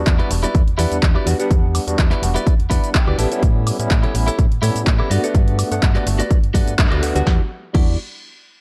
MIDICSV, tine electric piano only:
0, 0, Header, 1, 2, 480
1, 0, Start_track
1, 0, Tempo, 480000
1, 1506, Time_signature, 4, 2, 24, 8
1, 8609, End_track
2, 0, Start_track
2, 0, Title_t, "Tine electric piano"
2, 0, Program_c, 0, 4
2, 0, Note_on_c, 0, 55, 90
2, 0, Note_on_c, 0, 59, 83
2, 0, Note_on_c, 0, 62, 85
2, 0, Note_on_c, 0, 66, 99
2, 277, Note_off_c, 0, 55, 0
2, 279, Note_off_c, 0, 59, 0
2, 280, Note_off_c, 0, 62, 0
2, 281, Note_off_c, 0, 66, 0
2, 302, Note_on_c, 0, 55, 76
2, 304, Note_on_c, 0, 59, 70
2, 307, Note_on_c, 0, 62, 70
2, 309, Note_on_c, 0, 66, 86
2, 446, Note_off_c, 0, 55, 0
2, 447, Note_off_c, 0, 59, 0
2, 448, Note_off_c, 0, 62, 0
2, 450, Note_off_c, 0, 66, 0
2, 782, Note_on_c, 0, 55, 97
2, 784, Note_on_c, 0, 59, 91
2, 787, Note_on_c, 0, 62, 89
2, 790, Note_on_c, 0, 78, 109
2, 1122, Note_off_c, 0, 55, 0
2, 1123, Note_off_c, 0, 59, 0
2, 1124, Note_off_c, 0, 62, 0
2, 1126, Note_off_c, 0, 78, 0
2, 1150, Note_on_c, 0, 55, 80
2, 1154, Note_on_c, 0, 59, 74
2, 1156, Note_on_c, 0, 62, 76
2, 1159, Note_on_c, 0, 66, 87
2, 1247, Note_off_c, 0, 55, 0
2, 1249, Note_off_c, 0, 59, 0
2, 1250, Note_off_c, 0, 62, 0
2, 1251, Note_off_c, 0, 66, 0
2, 1262, Note_on_c, 0, 55, 95
2, 1266, Note_on_c, 0, 59, 91
2, 1268, Note_on_c, 0, 62, 91
2, 1270, Note_on_c, 0, 66, 106
2, 1362, Note_off_c, 0, 55, 0
2, 1364, Note_off_c, 0, 59, 0
2, 1365, Note_off_c, 0, 62, 0
2, 1366, Note_off_c, 0, 66, 0
2, 1390, Note_on_c, 0, 55, 101
2, 1392, Note_on_c, 0, 59, 91
2, 1395, Note_on_c, 0, 62, 92
2, 1398, Note_on_c, 0, 78, 113
2, 1841, Note_off_c, 0, 55, 0
2, 1842, Note_off_c, 0, 59, 0
2, 1844, Note_off_c, 0, 62, 0
2, 1845, Note_off_c, 0, 78, 0
2, 1871, Note_on_c, 0, 55, 91
2, 1874, Note_on_c, 0, 59, 81
2, 1876, Note_on_c, 0, 62, 81
2, 1880, Note_on_c, 0, 66, 100
2, 2198, Note_off_c, 0, 55, 0
2, 2199, Note_off_c, 0, 59, 0
2, 2200, Note_off_c, 0, 62, 0
2, 2202, Note_off_c, 0, 66, 0
2, 2224, Note_on_c, 0, 55, 79
2, 2226, Note_on_c, 0, 59, 71
2, 2229, Note_on_c, 0, 62, 69
2, 2232, Note_on_c, 0, 66, 83
2, 2367, Note_off_c, 0, 55, 0
2, 2368, Note_off_c, 0, 59, 0
2, 2370, Note_off_c, 0, 62, 0
2, 2371, Note_off_c, 0, 66, 0
2, 2702, Note_on_c, 0, 55, 98
2, 2705, Note_on_c, 0, 59, 90
2, 2707, Note_on_c, 0, 62, 90
2, 2710, Note_on_c, 0, 78, 109
2, 3042, Note_off_c, 0, 55, 0
2, 3043, Note_off_c, 0, 59, 0
2, 3044, Note_off_c, 0, 62, 0
2, 3046, Note_off_c, 0, 78, 0
2, 3071, Note_on_c, 0, 55, 83
2, 3073, Note_on_c, 0, 59, 75
2, 3077, Note_on_c, 0, 62, 75
2, 3079, Note_on_c, 0, 66, 91
2, 3168, Note_off_c, 0, 55, 0
2, 3169, Note_off_c, 0, 59, 0
2, 3170, Note_off_c, 0, 62, 0
2, 3172, Note_off_c, 0, 66, 0
2, 3184, Note_on_c, 0, 55, 97
2, 3187, Note_on_c, 0, 59, 90
2, 3189, Note_on_c, 0, 61, 89
2, 3192, Note_on_c, 0, 64, 109
2, 3283, Note_off_c, 0, 55, 0
2, 3284, Note_off_c, 0, 59, 0
2, 3285, Note_off_c, 0, 61, 0
2, 3287, Note_off_c, 0, 64, 0
2, 3313, Note_on_c, 0, 55, 98
2, 3316, Note_on_c, 0, 59, 93
2, 3318, Note_on_c, 0, 61, 94
2, 3321, Note_on_c, 0, 64, 111
2, 3763, Note_off_c, 0, 55, 0
2, 3764, Note_off_c, 0, 59, 0
2, 3766, Note_off_c, 0, 61, 0
2, 3767, Note_off_c, 0, 64, 0
2, 3792, Note_on_c, 0, 55, 91
2, 3794, Note_on_c, 0, 59, 81
2, 3796, Note_on_c, 0, 61, 84
2, 3799, Note_on_c, 0, 64, 102
2, 4118, Note_off_c, 0, 55, 0
2, 4119, Note_off_c, 0, 59, 0
2, 4120, Note_off_c, 0, 61, 0
2, 4122, Note_off_c, 0, 64, 0
2, 4143, Note_on_c, 0, 55, 79
2, 4146, Note_on_c, 0, 59, 71
2, 4149, Note_on_c, 0, 61, 73
2, 4152, Note_on_c, 0, 64, 88
2, 4287, Note_off_c, 0, 55, 0
2, 4288, Note_off_c, 0, 59, 0
2, 4290, Note_off_c, 0, 61, 0
2, 4291, Note_off_c, 0, 64, 0
2, 4625, Note_on_c, 0, 55, 98
2, 4628, Note_on_c, 0, 59, 93
2, 4630, Note_on_c, 0, 61, 88
2, 4633, Note_on_c, 0, 64, 111
2, 4963, Note_off_c, 0, 55, 0
2, 4965, Note_off_c, 0, 59, 0
2, 4966, Note_off_c, 0, 61, 0
2, 4967, Note_off_c, 0, 64, 0
2, 4992, Note_on_c, 0, 55, 84
2, 4995, Note_on_c, 0, 59, 77
2, 4998, Note_on_c, 0, 61, 78
2, 5000, Note_on_c, 0, 64, 93
2, 5088, Note_off_c, 0, 55, 0
2, 5090, Note_off_c, 0, 59, 0
2, 5091, Note_off_c, 0, 61, 0
2, 5092, Note_off_c, 0, 64, 0
2, 5104, Note_on_c, 0, 57, 99
2, 5106, Note_on_c, 0, 59, 92
2, 5109, Note_on_c, 0, 62, 94
2, 5111, Note_on_c, 0, 66, 112
2, 5203, Note_off_c, 0, 57, 0
2, 5204, Note_off_c, 0, 59, 0
2, 5205, Note_off_c, 0, 62, 0
2, 5206, Note_off_c, 0, 66, 0
2, 5233, Note_on_c, 0, 57, 99
2, 5236, Note_on_c, 0, 59, 95
2, 5238, Note_on_c, 0, 62, 92
2, 5240, Note_on_c, 0, 78, 110
2, 5683, Note_off_c, 0, 57, 0
2, 5684, Note_off_c, 0, 59, 0
2, 5686, Note_off_c, 0, 62, 0
2, 5686, Note_off_c, 0, 78, 0
2, 5712, Note_on_c, 0, 57, 92
2, 5715, Note_on_c, 0, 59, 83
2, 5717, Note_on_c, 0, 62, 84
2, 5720, Note_on_c, 0, 78, 104
2, 6038, Note_off_c, 0, 57, 0
2, 6040, Note_off_c, 0, 59, 0
2, 6041, Note_off_c, 0, 62, 0
2, 6042, Note_off_c, 0, 78, 0
2, 6063, Note_on_c, 0, 57, 76
2, 6066, Note_on_c, 0, 59, 70
2, 6068, Note_on_c, 0, 62, 70
2, 6070, Note_on_c, 0, 66, 87
2, 6206, Note_off_c, 0, 57, 0
2, 6208, Note_off_c, 0, 59, 0
2, 6209, Note_off_c, 0, 62, 0
2, 6210, Note_off_c, 0, 66, 0
2, 6542, Note_on_c, 0, 57, 98
2, 6544, Note_on_c, 0, 59, 89
2, 6546, Note_on_c, 0, 62, 91
2, 6550, Note_on_c, 0, 78, 108
2, 6882, Note_off_c, 0, 57, 0
2, 6883, Note_off_c, 0, 59, 0
2, 6884, Note_off_c, 0, 62, 0
2, 6886, Note_off_c, 0, 78, 0
2, 6910, Note_on_c, 0, 57, 84
2, 6913, Note_on_c, 0, 59, 77
2, 6915, Note_on_c, 0, 62, 78
2, 6917, Note_on_c, 0, 66, 90
2, 7007, Note_off_c, 0, 57, 0
2, 7008, Note_off_c, 0, 59, 0
2, 7009, Note_off_c, 0, 62, 0
2, 7011, Note_off_c, 0, 66, 0
2, 7021, Note_on_c, 0, 57, 98
2, 7023, Note_on_c, 0, 59, 88
2, 7026, Note_on_c, 0, 62, 92
2, 7029, Note_on_c, 0, 66, 111
2, 7121, Note_off_c, 0, 57, 0
2, 7122, Note_off_c, 0, 59, 0
2, 7124, Note_off_c, 0, 62, 0
2, 7125, Note_off_c, 0, 66, 0
2, 7148, Note_on_c, 0, 55, 105
2, 7151, Note_on_c, 0, 59, 93
2, 7154, Note_on_c, 0, 62, 95
2, 7156, Note_on_c, 0, 66, 111
2, 7241, Note_off_c, 0, 55, 0
2, 7249, Note_off_c, 0, 59, 0
2, 7253, Note_on_c, 0, 55, 85
2, 7257, Note_off_c, 0, 62, 0
2, 7261, Note_on_c, 0, 59, 80
2, 7265, Note_off_c, 0, 66, 0
2, 7269, Note_on_c, 0, 62, 77
2, 7399, Note_off_c, 0, 55, 0
2, 7404, Note_off_c, 0, 59, 0
2, 7408, Note_off_c, 0, 62, 0
2, 7734, Note_on_c, 0, 55, 85
2, 7742, Note_on_c, 0, 59, 80
2, 7750, Note_on_c, 0, 62, 82
2, 7758, Note_on_c, 0, 66, 94
2, 7921, Note_off_c, 0, 55, 0
2, 7926, Note_off_c, 0, 59, 0
2, 7930, Note_off_c, 0, 62, 0
2, 7934, Note_off_c, 0, 66, 0
2, 8609, End_track
0, 0, End_of_file